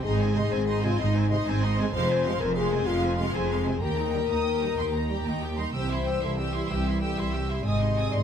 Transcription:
0.04 G#1 G#2 D#4 G#4 D#5 C6
0.19 C4 C5 G#5
0.35 C3 G#3 D#4 G#4 D#5 C6
0.51 G#1 G#2 C4 C5 G#5
0.67 D#4 D#5 C6
0.82 C3 G#3 C4 F4 C5 G#5
0.98 G#1 G#2 D#4 D#5 C6
1.14 C4 C5 G#5
1.30 C3 G#3 D#4 D#5 C6
1.46 G#1 G#2 C4 C5 G#5
1.62 D#4 D#5 C6
1.77 C3 G#3 C4 C5 G#5
1.93 F1 F2 G#3 C5 F5 C6
2.09 C4 C5 G#5
2.24 C3 G#3 F5 C6
2.40 F1 F2 C4 A#4 C5 G#5
2.55 G#3 G#4 F5 C6
2.71 C3 G#3 C4 C5 G#5
2.86 F1 F2 G#3 F4 F5 C6
3.02 C4 C5 G#5
3.17 C3 G#3 F5 C6
3.34 F1 F2 C4 G#4 C5 G#5
3.49 G#3 F5 C6
3.65 C3 G#3 C4 C5 G#5
3.80 D#2 G4 A#4 G5 A#5
3.96 D#4 G5 A#5
4.12 D#3 G3 G4 G5 A#5
4.29 D#2 D#4 A#5 D#6
4.44 G4 G5
4.60 D#3 G3 D#4 A#5
4.77 D#2 G4 G5 C6
4.93 D#4 A#5
5.09 D#3 G3 G4 G5
5.25 D#2 D#4 G5 A#5
5.42 G4 G5
5.57 D#3 G3 D#4 A#5 C6
5.73 C2 E3 G3 G4 C5 G5 E6
5.89 E4 E5 C6
6.05 G4 G5 E6
6.21 C2 E4 A4 E5 C6
6.38 G4 G5 E6
6.52 E4 E5 C6
6.69 C2 E4 G4 G5 E6
6.85 E4 E5 C6
7.01 G4 A4 G5 E6
7.17 C2 E4 G4 E5 C6
7.33 G4 G5 E6
7.48 E4 E5 C6
7.65 G#1 G#2 C3 G#3 C4 D#5 G#5 D#6
7.80 D#4 D#5 C6
7.96 C4 G#5 D#6
8.11 G#1 G#2 D#4 D5 D#5 C6

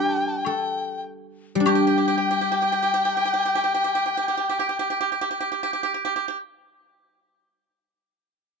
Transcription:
Already playing: G3 D4 G4 G5
0.09 A5
0.17 G5
0.27 A5
0.38 G5
0.45 A4, high woodblock
1.55 G3
1.60 D4
1.66 G4 G5, high woodblock
1.75 G4
1.87 G4
1.98 G4
2.08 G4
2.18 G4
2.31 G4
2.41 G4
2.52 G4
2.62 G4
2.72 G4
2.82 G4
2.94 G4
3.05 G4
3.17 G4
3.25 G4
3.34 G4
3.45 G4
3.55 G4
3.64 G4
3.74 G4
3.84 G4
3.95 G4
4.06 G4
4.17 G4
4.28 G4
4.37 G4
4.49 G4
4.59 G4
4.69 G4
4.79 G4
4.90 G4
5.01 G4
5.12 G4
5.21 G4
5.31 G4
5.40 G4
5.52 G4
5.63 G4
5.73 G4
5.83 G4
5.94 G4
6.05 G4
6.16 G4
6.28 G4

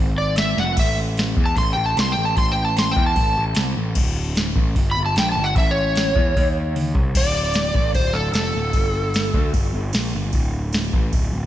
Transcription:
Already playing: G#1
0.18 D5
0.36 E5, snare, open hi-hat
0.57 F1 F#5, snare
0.77 A1 E5, kick, crash
1.17 snare, open hi-hat
1.37 E2, kick
1.46 A5
1.56 A1 C6, kick, open hi-hat
1.73 A1 G5
1.86 A5
1.97 C2 C6, snare, open hi-hat
2.12 G5
2.17 A1
2.25 A5
2.37 A1 C6, kick, open hi-hat
2.52 G5
2.65 A5
2.77 C6, snare, open hi-hat
2.91 G5
2.96 E2, kick
3.06 A5
3.16 A1, kick, open hi-hat
3.38 A1
3.55 C2, snare, open hi-hat
3.77 A1
3.95 D1, kick, crash
4.35 snare, open hi-hat
4.56 A1, kick
4.76 G1, kick, open hi-hat
4.91 B5
4.97 G1
5.06 A5
5.16 A#1 G5, snare, open hi-hat
5.32 A5
5.36 G1
5.44 F#5
5.56 A1 E5, kick, open hi-hat
5.71 C#5
5.96 snare, open hi-hat
6.15 E2, kick
6.36 D#2, kick, open hi-hat
6.76 open hi-hat, high tom
6.95 C2, kick
7.15 D1 D5, kick, crash
7.54 snare, crash
7.75 A1, kick
7.94 D1 C5, kick, crash
8.13 D1 A4
8.33 F1 A4, snare, crash
8.55 D1
8.73 G1, kick, crash
9.14 snare, crash
9.34 D2, kick
9.54 G1, kick, crash
9.74 G1
9.93 A#1, snare, crash
10.15 G1
10.33 D1, kick, crash
10.73 snare, crash
10.93 A1, kick
11.13 D1, kick, crash
11.33 D1

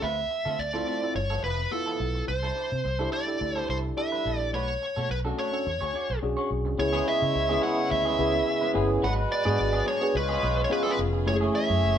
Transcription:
0.02 D2 A3 C4 F4 B4 E5
0.17 muted clean electric guitar stroke
0.30 muted clean electric guitar stroke
0.45 D3 A3 C4 F4 A4
0.58 D2 D5, muted clean electric guitar stroke
0.73 A3 C4 E4 F4 A4
0.86 A3 C4 F4 A4
1.02 C4 E4 F4 A4, muted clean electric guitar stroke
1.15 G1 C#5, muted clean electric guitar stroke
1.30 F3 B3 E4 A4
1.43 F1 F3 B3 E4 B4
1.58 muted clean electric guitar stroke
1.71 B3 E4 F4 A4, muted clean electric guitar stroke
1.86 F3 B3 E4 A4
2.00 B1, muted clean electric guitar stroke
2.14 muted clean electric guitar stroke
2.28 C2 C5, muted clean electric guitar stroke
2.43 G3 D4 E4 A4
2.56 G3 D4 E4 A4
2.71 C3, muted clean electric guitar stroke
2.84 C2, muted clean electric guitar stroke
2.99 G3 D4 E4 G4 A4
3.12 G3 D4 E4 A4 D5
3.27 D4 E4 G4 A4, muted clean electric guitar stroke
3.40 D2, muted clean electric guitar stroke
3.56 G3 D4 E4 A4 C5
3.68 C2 G3 D4 E4 A4 C5
3.84 muted clean electric guitar stroke
3.97 D4 E4 G4 A4 E5, muted clean electric guitar stroke
4.12 G3 D4 E4 B4
4.25 A#1 G3 D4 E4 A4
4.38 D5, muted clean electric guitar stroke
4.53 B1 A3 D4 F#4 B4 C#5
4.69 muted clean electric guitar stroke
4.81 muted clean electric guitar stroke
4.96 B2 A3 D4 F#4 A4
5.10 B1 B4, muted clean electric guitar stroke
5.25 A3 C#4 D4 F#4 A4
5.37 A3 D4 F#4 A4 C#5
5.52 C#4 D4 F#4 A4, muted clean electric guitar stroke
5.66 E2, muted clean electric guitar stroke
5.81 D2 D4 F#4 G#4 C#5
5.94 D4 F#4 G#4 D5
6.09 B1, muted clean electric guitar stroke
6.22 B1 C#4 D4 F#4 G#4, muted clean electric guitar stroke
6.37 D4 F#4 G#4 C#5
6.50 B1, muted clean electric guitar stroke
6.65 C2, muted clean electric guitar stroke
6.78 C#2 C#3 G#3 B3 C#4 E4 G#4 B4 C#5, muted clean electric guitar stroke
6.93 G#3 B3 E4 G#4
7.06 G#3 B3 E4 G#4 E5
7.21 C#3, muted clean electric guitar stroke
7.34 C#2, muted clean electric guitar stroke
7.49 G#3 B3 C#4 E4 G#4
7.62 G#3 B3 E4 G#4 F#5
7.78 muted clean electric guitar stroke
7.90 D2 E5, muted clean electric guitar stroke
8.05 G#3 B3 E4 G#4
8.18 C#2 G#3 B3 C#4 E4 G#4
8.34 muted clean electric guitar stroke
8.46 muted clean electric guitar stroke
8.61 G#3 B3 E4 B4
8.74 G1 G#3 B3 C#4 E4 G#4
8.90 muted clean electric guitar stroke
9.02 G#1 F#3 G#3 B3 D4 F#4 B4 F#5
9.18 muted clean electric guitar stroke
9.30 D5, muted clean electric guitar stroke
9.45 G#2 F#3 B3 D4 F#4 G#4
9.58 G#1, muted clean electric guitar stroke
9.73 F#3 B3 D4 G#4
9.86 F#3 B3 D4 G#4 C#5
10.01 B3 D4 F#4 G#4, muted clean electric guitar stroke
10.14 C#2 C#3 G#3 C#4 F4 G#4 B4 C#5, muted clean electric guitar stroke
10.29 G#3 B3 F4 G#4
10.42 B1 G#3 B3 F4 B4
10.57 muted clean electric guitar stroke
10.64 C#5
10.70 B3 C#4 F4 G#4 B4, muted clean electric guitar stroke
10.83 B3 F4 G#4 A4
10.87 G#3 B4
10.98 F1, muted clean electric guitar stroke
11.13 muted clean electric guitar stroke
11.26 F#1 F#3 A3 C#4 E4 G4 G#4 C#5, muted clean electric guitar stroke
11.34 G#4
11.41 E3 A3 C#4 G#4
11.54 E3 A3 C#4 G#4 E5
11.69 F#2, muted clean electric guitar stroke
11.82 F#1, muted clean electric guitar stroke

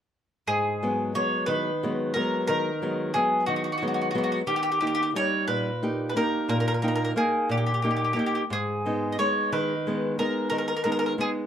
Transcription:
0.47 G#2 G#4
0.83 F#3 G#3 B3
1.15 F#3 G#3 B3 C#5
1.46 D#3 B4
1.83 F#3 G#3 B3
2.14 F#3 G#3 B3 A#4
2.47 D#3 A#4
2.82 F#3 G#3 B3
3.14 F#3 G#3 B3 G#4
3.46 D#3 F#4
3.56 F#4
3.64 F#4
3.72 F#4
3.78 F#4
3.82 F#3 G#3 B3
3.88 F#4
3.94 F#4
4.02 F#4
4.11 F#3 F#4
4.15 G#3 B3 F#4
4.24 F#4
4.32 F#4
4.47 D#3 G4
4.56 G4
4.63 G4
4.72 G4
4.81 A#3 D#4 G4
4.87 G4
4.95 G4
5.03 G4
5.15 G3 D#4 G4 C#5
5.48 A#2 B4
5.83 A#3 D#4 G4
6.10 B4
6.16 A#3 D#4 G4 A#4
6.49 A#2 A#4
6.60 A#4
6.68 A#4
6.74 A#4
6.82 A#3 D#4 A#4 G5
6.88 A#4
6.96 A#4
7.05 A#4
7.16 A#3 D#4 G#4 A#4
7.49 A#2 G4
7.57 G4
7.66 G4
7.74 G4
7.82 A#3 D#4 G4
7.91 G4
7.97 G4
8.05 G4
8.13 A#3 D#4 G4
8.19 G4
8.26 G4
8.35 G4
8.50 G#2 G#4
8.86 G#3 B3 D#4
9.12 D#5
9.19 G#3 B3 D#4 C#5
9.52 D#3 B4
9.87 G#3 B3 D#4
10.19 G#3 B3 D#4 A#4
10.50 D#3 A#4
10.58 A#4
10.68 A#4
10.77 A#4
10.84 G#3 B3 D#4 A#4
10.92 A#4
10.99 A#4
11.06 A#4
11.18 G#3 B3 D#4 G#4

